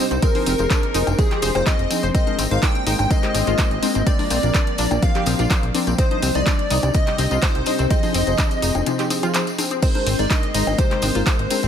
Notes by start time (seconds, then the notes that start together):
Already playing: C3 C4 D#4 G4 C5
0.00 G3 D#4 C5 D#5
0.11 C2 C4, closed hi-hat, tambourine
0.22 F3 C4 D#4 G#4 A#4 C5, kick, closed hi-hat, tambourine
0.35 F3 D#4 G#4 C5, open hi-hat, high conga
0.46 F1 C4, open hi-hat, tambourine
0.58 F1 F3 D#4 G#4 C5, closed hi-hat, tambourine
0.70 F3 D4 D#4 C5, kick, clap, closed hi-hat, tambourine, high conga
0.83 closed hi-hat
0.94 F1 F3 D#4 G#4 C5, open hi-hat, tambourine
1.07 F1, closed hi-hat, tambourine, cowbell, high conga
1.18 C3 F3 D#4 G#4 C5, kick, closed hi-hat, tambourine
1.31 F3 D#4 G4 G#4 C5, clap, closed hi-hat
1.42 F1 C5, open hi-hat, tambourine, high conga, high woodblock
1.55 F1 F3 A#3 D#4 G#4 C5, closed hi-hat, tambourine, cowbell
1.66 C4 D#4 G#4 D#5, kick, clap, closed hi-hat, tambourine
1.79 F1, closed hi-hat
1.90 F3 C4 D#4 G#4 C5, open hi-hat, tambourine, high conga
2.03 F1 C5, closed hi-hat, tambourine
2.14 G#3 A#3 C4 D#4 A#4 C5 D#5, kick, closed hi-hat, tambourine
2.27 G#3 D#4 A#4 C5, closed hi-hat, high conga
2.39 G#1 C4, open hi-hat, tambourine
2.51 G#1 G#3 D#4 A#4 C5 F5, closed hi-hat, tambourine
2.62 G#3 D4 D#4 A#4 C5 G5, kick, clap, closed hi-hat, tambourine, high conga
2.75 closed hi-hat
2.86 G#1 G#3 D#4 A#4 C5 G5, open hi-hat, tambourine
2.99 G#1, closed hi-hat, tambourine, cowbell, high conga
3.10 C3 G#3 D#4 A#4 C5 D#5, kick, closed hi-hat, tambourine
3.23 G#3 D#4 G4 A#4 C5, clap, closed hi-hat
3.34 G#1 C4, open hi-hat, tambourine, high conga, high woodblock
3.47 G#1 G#3 D#4 F4 A#4 C5, closed hi-hat, tambourine
3.58 D#4 A#4 C5, kick, clap, closed hi-hat, tambourine
3.71 G#1, closed hi-hat
3.82 G#3 C4 D#4 A#4 C5, open hi-hat, tambourine, high conga
3.95 G#1 C4, closed hi-hat, tambourine
4.06 F3 C4 D4 A#4 D5, kick, closed hi-hat, tambourine
4.19 F3 D4 A#4 D5, open hi-hat, high conga
4.30 A#1 C4, open hi-hat, tambourine
4.43 A#1 F3 D4 A#4 D5, closed hi-hat, tambourine
4.54 F3 D4 A#4 D5, kick, clap, closed hi-hat, tambourine, high conga
4.67 closed hi-hat
4.78 A#1 F3 D4 A#4 D5, open hi-hat, tambourine
4.91 A#1, closed hi-hat, tambourine, cowbell, high conga
5.02 C3 F3 D4 A#4 D5 F5, kick, closed hi-hat, tambourine
5.15 F3 D4 G4 A#4 D5, clap, closed hi-hat
5.26 A#1 C4, open hi-hat, tambourine, high conga, high woodblock
5.39 A#1 F3 D4 F4 A#4 D5, closed hi-hat, tambourine
5.50 F3 D4 C5 D5, kick, clap, closed hi-hat, tambourine
5.63 A#1, closed hi-hat
5.74 F3 C4 D4 A#4 D5, open hi-hat, tambourine, high conga
5.87 A#1 C4, closed hi-hat, tambourine
5.98 C3 G3 C4 D#4 G4 C5 D#5, kick, closed hi-hat, tambourine
6.11 G3 D#4 C5 D#5, closed hi-hat, high conga
6.22 C2 C4, open hi-hat, tambourine
6.35 C2 G3 D#4 C5 D5 D#5, closed hi-hat, tambourine
6.46 G3 D4, kick, clap, closed hi-hat, tambourine, high conga
6.59 closed hi-hat
6.70 C2 G3 D#4 C5 D#5, open hi-hat, tambourine
6.83 C2, closed hi-hat, tambourine, cowbell, high conga
6.94 C3 G3 D#4 C5 D#5, kick, closed hi-hat, tambourine
7.07 G3 D#4 G4 C5 D#5, clap, closed hi-hat
7.18 C2 C4, open hi-hat, tambourine, high conga, high woodblock
7.31 C2 G3 D#4 F4 C5 D#5, closed hi-hat, tambourine
7.42 D#4 C5 D#5, kick, clap, closed hi-hat, tambourine
7.55 C2, closed hi-hat
7.66 G3 C4 D#4 C5 D#5, open hi-hat, tambourine, high conga
7.78 C2 C4, closed hi-hat, tambourine
7.90 F3 C4 D#4 G#4 C5 D#5, kick, closed hi-hat, tambourine
8.03 F3 D#4 G#4 C5, open hi-hat, tambourine, high conga
8.14 F1 C4, open hi-hat, tambourine
8.27 F1 F3 D#4 G#4 C5, closed hi-hat, tambourine
8.38 D4 D#4 G#4, kick, clap, closed hi-hat, tambourine, high conga
8.51 closed hi-hat, tambourine
8.62 F1 F3 D#4 G#4 C5, open hi-hat, tambourine, high woodblock
8.75 F1, closed hi-hat, tambourine, cowbell, high conga
8.86 C3 F3 D#4 G#4 C5, closed hi-hat, tambourine
8.99 F3 D#4 G4 G#4 C5, clap, closed hi-hat, tambourine
9.10 C4, open hi-hat, tambourine, high conga, high woodblock
9.23 F3 D#4 F4 G#4 C5, closed hi-hat, tambourine, cowbell
9.34 F3 D#4 G#4 C5, clap, closed hi-hat, tambourine
9.47 closed hi-hat, tambourine
9.58 F3 C4 D#4 G#4 C5, open hi-hat, tambourine, high conga
9.71 C4, closed hi-hat, tambourine, high woodblock
9.82 G#3 A#3 C4 D#4 A#4 C5 C6, kick, closed hi-hat, ride, tambourine, crash
9.95 G#3 D#4 A#4 C5, closed hi-hat, high conga
10.06 G#1 C4, open hi-hat, ride, tambourine
10.19 G#1 G#3 D#4 A#4 C5 D5, closed hi-hat, tambourine
10.30 D4 A#4 C5 D#5, kick, clap, closed hi-hat, ride, tambourine, high conga
10.43 closed hi-hat
10.54 G#1 G#3 D#4 A#4 C5 D#5, open hi-hat, ride, tambourine
10.67 G#1, closed hi-hat, tambourine, cowbell, high conga
10.78 C3 G#3 D#4 A#4 C5, kick, closed hi-hat, ride, tambourine
10.91 G#3 D#4 G4 A#4 C5, clap, closed hi-hat
11.02 G#1 C4, open hi-hat, ride, tambourine, high conga, high woodblock
11.15 G#1 G#3 D#4 F4 A#4 C5, closed hi-hat, tambourine
11.26 G#3 D#4 C5, kick, clap, closed hi-hat, ride, tambourine
11.39 G#1, closed hi-hat
11.50 G#3 C4 D#4 A#4 C5, open hi-hat, ride, tambourine, high conga
11.63 G#1 C4, closed hi-hat, tambourine